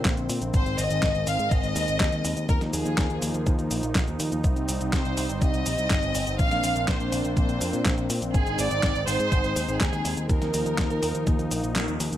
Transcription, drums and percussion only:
0.05 kick, snare, clap, closed hi-hat, cabasa
0.17 closed hi-hat, cabasa
0.29 open hi-hat, cabasa
0.42 closed hi-hat, cabasa
0.54 kick, closed hi-hat, cabasa
0.66 closed hi-hat, cabasa
0.78 open hi-hat, cabasa
0.91 closed hi-hat, cabasa
1.03 kick, snare, clap, closed hi-hat, cabasa
1.15 closed hi-hat, cabasa
1.27 open hi-hat, cabasa
1.39 closed hi-hat, cabasa
1.51 kick, closed hi-hat, cabasa
1.64 closed hi-hat, cabasa
1.76 open hi-hat, cabasa
1.88 closed hi-hat, cabasa
2.00 kick, snare, clap, closed hi-hat, cabasa
2.12 closed hi-hat, cabasa
2.25 open hi-hat, cabasa
2.37 closed hi-hat, cabasa
2.49 kick, closed hi-hat, cabasa
2.61 snare, closed hi-hat, cabasa
2.73 open hi-hat, cabasa
2.86 closed hi-hat, cabasa
2.98 kick, snare, clap, closed hi-hat, cabasa
3.10 closed hi-hat, cabasa
3.22 open hi-hat, cabasa
3.34 closed hi-hat, cabasa
3.47 kick, closed hi-hat, cabasa
3.59 closed hi-hat, cabasa
3.71 open hi-hat, cabasa
3.83 closed hi-hat, cabasa
3.95 kick, snare, clap, closed hi-hat, cabasa
4.08 closed hi-hat, cabasa
4.20 open hi-hat, cabasa
4.32 closed hi-hat, cabasa
4.44 kick, closed hi-hat, cabasa
4.56 closed hi-hat, cabasa
4.69 open hi-hat, cabasa
4.81 closed hi-hat, cabasa
4.93 kick, snare, clap, closed hi-hat, cabasa
5.05 closed hi-hat, cabasa
5.17 open hi-hat, cabasa
5.30 closed hi-hat, cabasa
5.42 kick, closed hi-hat, cabasa
5.54 closed hi-hat, cabasa
5.66 open hi-hat, cabasa
5.78 closed hi-hat, cabasa
5.90 kick, snare, clap, closed hi-hat, cabasa
6.03 closed hi-hat, cabasa
6.15 open hi-hat, cabasa
6.27 closed hi-hat, cabasa
6.39 kick, closed hi-hat, cabasa
6.51 snare, closed hi-hat, cabasa
6.64 open hi-hat, cabasa
6.76 closed hi-hat, cabasa
6.88 kick, snare, clap, closed hi-hat, cabasa
7.00 closed hi-hat, cabasa
7.12 open hi-hat, cabasa
7.25 closed hi-hat, cabasa
7.37 kick, closed hi-hat, cabasa
7.49 closed hi-hat, cabasa
7.61 open hi-hat, cabasa
7.73 closed hi-hat, cabasa
7.86 kick, snare, clap, closed hi-hat, cabasa
7.98 closed hi-hat, cabasa
8.10 open hi-hat, cabasa
8.22 closed hi-hat, cabasa
8.34 kick, closed hi-hat, cabasa
8.47 closed hi-hat, cabasa
8.59 open hi-hat, cabasa
8.71 closed hi-hat, cabasa
8.83 kick, snare, clap, closed hi-hat, cabasa
8.95 closed hi-hat, cabasa
9.08 open hi-hat, cabasa
9.20 closed hi-hat, cabasa
9.32 kick, closed hi-hat, cabasa
9.44 closed hi-hat, cabasa
9.56 open hi-hat, cabasa
9.69 closed hi-hat, cabasa
9.81 kick, snare, clap, closed hi-hat, cabasa
9.93 closed hi-hat, cabasa
10.05 open hi-hat, cabasa
10.17 closed hi-hat, cabasa
10.29 kick, closed hi-hat, cabasa
10.42 snare, closed hi-hat, cabasa
10.54 open hi-hat, cabasa
10.66 closed hi-hat, cabasa
10.78 kick, snare, clap, closed hi-hat, cabasa
10.90 closed hi-hat, cabasa
11.03 open hi-hat, cabasa
11.15 closed hi-hat, cabasa
11.27 kick, closed hi-hat, cabasa
11.39 closed hi-hat, cabasa
11.51 open hi-hat, cabasa
11.64 closed hi-hat, cabasa
11.76 snare, clap, closed hi-hat, cabasa
11.88 closed hi-hat, cabasa
12.00 open hi-hat, cabasa
12.12 closed hi-hat, cabasa

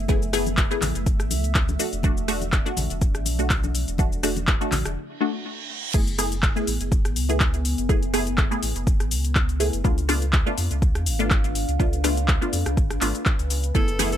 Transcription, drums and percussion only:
0.08 kick, closed hi-hat, high conga, shaker
0.22 shaker
0.33 cross-stick, open hi-hat, shaker
0.46 closed hi-hat, high conga, shaker
0.57 kick, clap, closed hi-hat, shaker
0.71 shaker
0.81 clap, open hi-hat, high conga, low conga, shaker
0.95 closed hi-hat, shaker
1.06 kick, closed hi-hat, shaker
1.20 cross-stick, shaker
1.31 open hi-hat, high conga, shaker
1.44 closed hi-hat, shaker
1.55 kick, clap, closed hi-hat, shaker
1.69 high conga, shaker
1.80 open hi-hat, shaker
1.93 closed hi-hat, shaker
2.03 kick, closed hi-hat, high conga, shaker
2.17 shaker
2.28 cross-stick, open hi-hat, shaker
2.41 closed hi-hat, high conga, shaker
2.52 kick, clap, closed hi-hat, shaker
2.66 shaker
2.77 open hi-hat, high conga, low conga, shaker
2.90 closed hi-hat, shaker
3.01 kick, closed hi-hat, shaker
3.15 cross-stick, shaker
3.25 open hi-hat, high conga, shaker
3.39 closed hi-hat, shaker
3.50 kick, clap, closed hi-hat, shaker
3.64 high conga, shaker
3.75 open hi-hat, shaker
3.88 closed hi-hat, shaker
3.98 kick, closed hi-hat, high conga, shaker
4.13 shaker
4.23 cross-stick, open hi-hat, shaker
4.37 closed hi-hat, high conga, shaker
4.47 kick, clap, closed hi-hat, shaker
4.61 shaker
4.72 clap, open hi-hat, high conga, low conga, shaker
4.86 cross-stick, closed hi-hat, shaker
5.94 kick, crash, shaker
6.07 closed hi-hat, shaker
6.19 cross-stick, open hi-hat, shaker
6.32 closed hi-hat, shaker
6.43 kick, clap, shaker
6.57 shaker
6.67 open hi-hat, shaker
6.81 closed hi-hat, shaker
6.92 kick, shaker
7.05 cross-stick, closed hi-hat, shaker
7.16 open hi-hat, shaker
7.29 closed hi-hat, shaker
7.40 kick, clap, shaker
7.54 closed hi-hat, shaker
7.65 open hi-hat, shaker
7.78 closed hi-hat, shaker
7.89 kick, shaker
8.03 closed hi-hat, shaker
8.14 cross-stick, open hi-hat, shaker
8.27 closed hi-hat, shaker
8.38 kick, clap, shaker
8.52 shaker
8.63 open hi-hat, shaker
8.76 closed hi-hat, shaker
8.87 kick, shaker
9.00 cross-stick, closed hi-hat, shaker
9.11 open hi-hat, shaker
9.25 closed hi-hat, shaker
9.35 kick, clap, shaker
9.49 closed hi-hat, shaker
9.60 open hi-hat, shaker
9.73 closed hi-hat, shaker
9.85 kick, shaker
9.98 closed hi-hat, shaker
10.09 cross-stick, open hi-hat, shaker
10.22 closed hi-hat, shaker
10.33 kick, clap, shaker
10.47 shaker
10.58 open hi-hat, shaker
10.71 closed hi-hat, shaker
10.82 kick, shaker
10.95 cross-stick, closed hi-hat, shaker
11.06 open hi-hat, shaker
11.20 closed hi-hat, shaker
11.30 kick, clap, shaker
11.44 closed hi-hat, shaker
11.55 open hi-hat, shaker
11.69 closed hi-hat, shaker
11.80 kick, shaker
11.93 closed hi-hat, shaker
12.04 cross-stick, open hi-hat, shaker
12.17 closed hi-hat, shaker
12.28 kick, clap, shaker
12.42 shaker
12.53 open hi-hat, shaker
12.66 cross-stick, closed hi-hat, shaker
12.77 kick, shaker
12.90 cross-stick, closed hi-hat, shaker
13.01 clap, open hi-hat, shaker
13.15 closed hi-hat, shaker
13.25 kick, clap, shaker
13.39 closed hi-hat, shaker
13.50 open hi-hat, shaker
13.64 closed hi-hat, shaker
13.75 kick, shaker
13.88 closed hi-hat, shaker
13.99 cross-stick, open hi-hat, high conga, shaker
14.12 closed hi-hat, shaker

